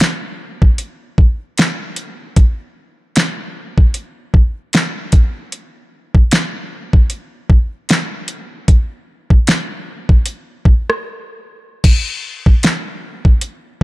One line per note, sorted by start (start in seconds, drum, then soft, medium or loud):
0.00 snare loud
0.00 closed hi-hat medium
0.62 kick medium
0.78 closed hi-hat medium
1.18 kick medium
1.58 snare loud
1.58 closed hi-hat medium
1.96 closed hi-hat medium
2.36 kick loud
2.36 closed hi-hat medium
3.16 snare loud
3.16 closed hi-hat medium
3.78 kick medium
3.94 closed hi-hat medium
4.34 kick medium
4.73 snare loud
4.73 closed hi-hat medium
5.12 kick loud
5.12 closed hi-hat medium
5.52 closed hi-hat medium
6.15 kick medium
6.31 snare loud
6.31 closed hi-hat medium
6.93 kick medium
7.10 closed hi-hat medium
7.50 kick medium
7.89 snare loud
7.89 closed hi-hat medium
8.28 closed hi-hat medium
8.68 kick loud
8.68 closed hi-hat medium
9.30 kick medium
9.47 snare loud
9.47 closed hi-hat medium
10.09 kick medium
10.26 closed hi-hat medium
10.65 kick loud
10.90 cross-stick loud
11.84 kick loud
11.84 closed hi-hat medium
11.84 crash loud
12.46 kick medium
12.63 snare loud
12.63 closed hi-hat medium
13.25 kick medium
13.41 closed hi-hat medium